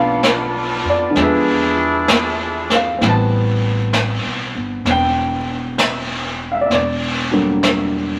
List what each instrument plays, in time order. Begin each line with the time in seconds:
Already playing: upright bass B1, upright piano D3 F3 A3 B3 F5, saxophone section B3 F4 A4 D5
0.23 brush sweep, snare, hi-hat pedal
0.84 upright bass F2
0.90 upright piano D5
1.10 upright piano D3 F3
1.15 upright bass E2, upright piano G#3, saxophone section D4 E4 G#4, brush sweep, snare
1.21 upright piano B3 E5
2.08 brush sweep, snare, hi-hat pedal
2.70 snare
2.75 upright piano F5
2.98 upright bass A1, upright piano E3 G3 C4, brush sweep, snare
3.03 upright piano B3
3.09 upright piano A5
3.93 brush sweep, snare, hi-hat pedal
4.24 upright bass B1
4.55 upright bass G1
4.85 upright bass E1, brush sweep, snare
4.91 upright piano G5
5.78 brush sweep, snare, hi-hat pedal
5.84 upright piano E5
6.52 upright piano E5 F5
6.61 upright piano D5
6.66 upright bass E1, upright piano E5
6.71 upright piano D5, brush sweep, snare
7.31 upright piano D3 F#3 G3 A#3
7.63 upright piano E5, brush sweep, snare, hi-hat pedal